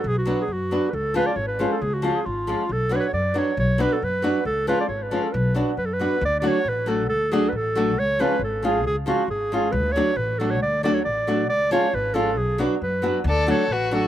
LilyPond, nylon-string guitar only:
\new Staff \with { instrumentName = "Nylon-string guitar" } { \time 2/4 \tempo 4 = 136 r8 <fis b d' fis'>8 r8 <fis b d' fis'>8 | r8 <eis gis cis' eis'>8 r8 <eis gis cis' eis'>8 | r8 <eis gis cis' eis'>8 r8 <eis gis cis' eis'>8 | r8 <fis b d' fis'>8 r8 <fis b d' fis'>8 |
r8 <fis b d' fis'>8 r8 <fis b d' fis'>8 | r8 <eis gis cis' eis'>8 r8 <eis gis cis' eis'>8 | r8 <fis b d' fis'>8 r8 <fis b d' fis'>8 | r8 <fis a d' fis'>8 r8 <fis a d' fis'>8 |
r8 <fis a d' fis'>8 r8 <fis a d' fis'>8 | r8 <eis gis cis' eis'>8 r8 <eis gis cis' eis'>8 | r8 <eis gis cis' eis'>8 r8 <eis gis cis' eis'>8 | r8 <fis a d' fis'>8 r8 <fis a d' fis'>8 |
r8 <fis a d' fis'>8 r8 <fis a d' fis'>8 | r8 <eis gis cis' eis'>8 r8 <eis gis cis' eis'>8 | r8 <fis b d' fis'>8 r8 <fis b d' fis'>8 | r8 <fis a d' fis'>8 r8 <fis a d' fis'>8 | }